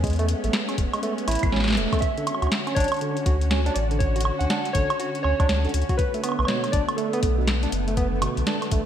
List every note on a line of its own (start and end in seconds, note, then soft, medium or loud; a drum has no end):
0.00 0.35 E2 medium
0.00 1.98 G#3 medium
0.00 0.13 G#3 medium
0.00 1.98 B3 medium
0.00 5.95 C#4 medium
0.00 kick loud
0.00 closed hi-hat medium
0.07 closed hi-hat medium
0.10 closed hi-hat soft
0.13 closed hi-hat soft
0.16 closed hi-hat soft
0.19 0.25 A3 loud
0.19 closed hi-hat soft
0.28 closed hi-hat medium
0.44 0.50 A1 loud
0.44 0.52 A3 medium
0.44 closed hi-hat soft
0.53 snare loud
0.53 closed hi-hat medium
0.69 0.74 C#4 medium
0.69 closed hi-hat soft
0.69 high woodblock soft
0.78 0.88 E1 loud
0.78 kick loud
0.78 closed hi-hat medium
0.94 0.99 G#3 medium
0.94 closed hi-hat soft
0.94 high woodblock medium
1.03 1.12 A3 medium
1.03 closed hi-hat medium
1.18 closed hi-hat soft
1.28 1.37 A1 medium
1.28 1.42 E4 loud
1.28 closed hi-hat medium
1.28 high woodblock soft
1.31 closed hi-hat medium
1.35 closed hi-hat medium
1.39 closed hi-hat soft
1.43 1.79 A1 medium
1.43 kick loud
1.43 closed hi-hat soft
1.43 high woodblock soft
1.52 1.58 C#4 medium
1.52 snare medium
1.56 snare medium
1.60 snare medium
1.64 snare medium
1.68 snare medium
1.68 closed hi-hat soft
1.70 snare medium
1.72 snare loud
1.75 1.87 E1 medium
1.75 1.91 A3 medium
1.75 snare loud
1.75 closed hi-hat medium
1.93 1.98 A3 medium
1.93 kick loud
1.93 closed hi-hat soft
1.93 high woodblock medium
1.99 5.95 D3 medium
1.99 5.95 F#4 medium
1.99 2.47 E5 loud
1.99 kick loud
1.99 closed hi-hat soft
2.02 closed hi-hat medium
2.18 2.26 D3 medium
2.18 closed hi-hat soft
2.27 closed hi-hat medium
2.27 high woodblock medium
2.35 high woodblock medium
2.42 2.48 D2 loud
2.42 2.48 F#4 medium
2.42 closed hi-hat soft
2.42 high woodblock soft
2.47 high woodblock soft
2.52 snare loud
2.52 closed hi-hat medium
2.67 2.73 C#4 medium
2.67 closed hi-hat soft
2.67 high woodblock soft
2.75 2.86 A1 medium
2.75 2.86 D4 loud
2.75 3.78 C#5 loud
2.75 kick loud
2.75 closed hi-hat medium
2.80 closed hi-hat medium
2.84 closed hi-hat medium
2.88 closed hi-hat soft
2.92 closed hi-hat soft
2.92 high woodblock medium
2.94 closed hi-hat soft
2.97 closed hi-hat soft
2.99 closed hi-hat soft
3.01 3.15 D3 medium
3.01 closed hi-hat medium
3.17 closed hi-hat soft
3.26 3.70 D2 medium
3.26 3.35 F#4 medium
3.26 kick loud
3.26 closed hi-hat medium
3.41 closed hi-hat soft
3.51 3.60 C#4 medium
3.51 snare loud
3.51 closed hi-hat medium
3.66 3.72 D4 loud
3.66 closed hi-hat soft
3.74 4.31 A1 medium
3.74 3.86 D5 medium
3.74 closed hi-hat medium
3.91 4.00 D3 medium
3.91 closed hi-hat soft
3.99 4.41 C#5 loud
3.99 kick loud
3.99 closed hi-hat medium
4.16 4.22 F#4 medium
4.16 closed hi-hat soft
4.21 closed hi-hat medium
4.25 high woodblock medium
4.39 4.46 D2 loud
4.39 4.46 C#4 medium
4.39 4.75 F#5 loud
4.39 closed hi-hat soft
4.50 4.59 D4 loud
4.50 snare loud
4.50 closed hi-hat medium
4.65 closed hi-hat soft
4.73 4.84 A1 loud
4.73 4.89 D3 medium
4.73 5.22 C#5 loud
4.73 kick loud
4.73 closed hi-hat medium
4.90 closed hi-hat soft
4.90 high woodblock medium
5.00 5.09 F#4 medium
5.00 closed hi-hat medium
5.15 closed hi-hat soft
5.23 5.34 D2 medium
5.23 5.34 C#4 medium
5.23 5.94 C#5 loud
5.23 high woodblock medium
5.40 5.46 D2 medium
5.40 5.45 D4 loud
5.40 kick loud
5.40 closed hi-hat soft
5.40 high woodblock medium
5.49 5.67 D2 medium
5.49 snare loud
5.49 closed hi-hat medium
5.65 5.73 D3 medium
5.65 closed hi-hat soft
5.69 closed hi-hat soft
5.74 5.84 D2 medium
5.74 closed hi-hat medium
5.82 closed hi-hat soft
5.89 5.95 F#4 medium
5.89 kick loud
5.89 closed hi-hat soft
5.97 8.86 D3 medium
5.97 8.86 A3 medium
5.97 8.86 B3 medium
5.97 6.49 B4 loud
5.97 kick loud
5.97 closed hi-hat medium
6.14 6.20 A3 medium
6.14 closed hi-hat soft
6.24 6.33 B3 medium
6.24 closed hi-hat medium
6.24 high woodblock soft
6.29 high woodblock soft
6.32 high woodblock soft
6.39 6.45 B1 loud
6.39 high woodblock medium
6.45 6.62 B2 medium
6.45 6.73 C#5 medium
6.45 snare loud
6.45 closed hi-hat medium
6.45 high woodblock medium
6.64 closed hi-hat soft
6.64 high woodblock soft
6.72 6.83 A1 loud
6.72 6.82 D4 medium
6.72 6.98 D5 medium
6.72 kick loud
6.72 closed hi-hat medium
6.89 closed hi-hat soft
6.89 high woodblock medium
6.97 7.07 A3 medium
6.97 8.86 A4 medium
6.97 closed hi-hat medium
7.13 7.19 B3 loud
7.13 closed hi-hat soft
7.23 7.67 B1 medium
7.23 kick loud
7.23 closed hi-hat medium
7.38 7.47 B2 medium
7.48 snare loud
7.48 closed hi-hat medium
7.63 7.69 D4 medium
7.63 closed hi-hat soft
7.72 8.28 F#1 medium
7.72 closed hi-hat medium
7.88 7.93 A3 medium
7.88 closed hi-hat soft
7.97 8.06 B3 medium
7.97 kick loud
7.97 closed hi-hat medium
8.22 8.36 B2 medium
8.22 closed hi-hat medium
8.22 high woodblock medium
8.37 8.43 B1 loud
8.37 closed hi-hat soft
8.47 8.56 D4 medium
8.47 snare loud
8.47 closed hi-hat medium
8.62 closed hi-hat soft
8.62 high woodblock soft
8.71 8.81 A1 loud
8.71 8.81 A3 medium
8.71 kick loud
8.71 closed hi-hat medium